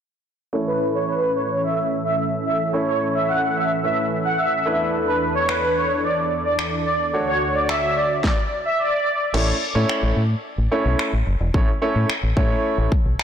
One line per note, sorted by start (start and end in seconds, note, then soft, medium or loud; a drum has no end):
0.53 4.62 A2 medium
0.53 7.10 E3 medium
0.53 2.69 A3 medium
0.53 2.69 C#4 medium
0.53 4.62 C#4 medium
0.53 2.70 E4 medium
0.53 4.62 A4 medium
0.53 2.70 C#5 medium
0.67 0.79 B4 medium
0.95 1.06 C#5 medium
1.09 1.31 B4 medium
1.36 1.47 C#5 medium
1.64 1.75 E5 medium
2.05 2.16 E5 medium
2.46 2.58 E5 medium
2.73 3.81 A3 medium
2.73 3.81 C#4 medium
2.73 3.81 E4 medium
2.73 3.82 C#5 medium
2.87 2.99 C#5 medium
3.15 3.26 E5 medium
3.29 3.51 F#5 medium
3.56 3.68 E5 medium
3.83 4.64 A3 soft
3.83 4.66 C#4 soft
3.83 4.65 E4 soft
3.83 4.65 B4 medium
3.83 3.95 E5 medium
4.25 4.36 F#5 medium
4.38 4.77 E5 medium
4.66 7.11 E2 medium
4.66 6.82 A3 medium
4.66 6.82 D4 medium
4.66 7.11 D4 medium
4.66 6.82 E4 medium
4.66 7.11 A4 medium
4.66 6.83 B4 medium
5.07 5.19 B4 medium
5.35 5.46 C#5 medium
5.49 5.72 B4 medium
5.49 finger snap loud
5.76 5.88 C#5 medium
6.04 6.15 D5 medium
6.45 6.56 D5 medium
6.59 finger snap loud
6.86 6.98 D5 medium
7.13 8.23 D2 medium
7.13 8.23 D3 medium
7.13 8.21 A3 medium
7.13 8.22 D4 medium
7.13 8.23 F#4 medium
7.13 8.22 F#4 medium
7.13 8.23 C#5 medium
7.13 8.22 C#5 medium
7.27 7.39 C#5 medium
7.55 7.67 D5 medium
7.69 7.92 E5 medium
7.69 finger snap loud
7.97 8.08 D5 medium
8.24 8.35 D5 medium
8.24 kick loud
8.24 snare medium
8.65 8.77 E5 medium
8.79 9.18 D5 medium
9.34 9.51 A1 loud
9.34 9.53 A3 medium
9.34 9.53 C#4 medium
9.34 9.53 E4 medium
9.34 9.53 C#5 medium
9.34 crash medium
9.75 9.84 A2 medium
9.75 10.20 A3 medium
9.75 10.21 C#4 medium
9.75 10.21 E4 medium
9.75 10.21 C#5 loud
9.89 finger snap loud
10.03 10.11 A1 medium
10.17 10.34 A2 medium
10.58 10.67 A1 medium
10.71 11.10 A3 medium
10.71 11.10 C#4 medium
10.71 11.11 E4 medium
10.71 11.11 C#5 medium
10.86 10.94 B1 medium
10.99 finger snap loud
11.13 11.22 A1 medium
11.27 11.35 F#1 medium
11.41 11.49 E1 medium
11.54 11.71 A1 loud
11.54 11.67 A3 medium
11.54 11.67 C#4 medium
11.54 11.67 E4 medium
11.54 11.67 C#5 loud
11.54 kick loud
11.82 12.08 A3 medium
11.82 12.08 C#4 medium
11.82 12.08 E4 medium
11.82 12.08 C#5 medium
11.96 12.04 A2 loud
12.10 finger snap loud
12.23 12.32 A1 medium
12.37 12.54 A2 loud
12.37 12.89 A3 medium
12.37 12.89 C#4 medium
12.37 12.89 E4 medium
12.37 12.89 C#5 loud
12.37 kick medium
12.78 12.87 A1 medium
12.92 kick medium
13.06 13.14 B1 medium
13.19 finger snap loud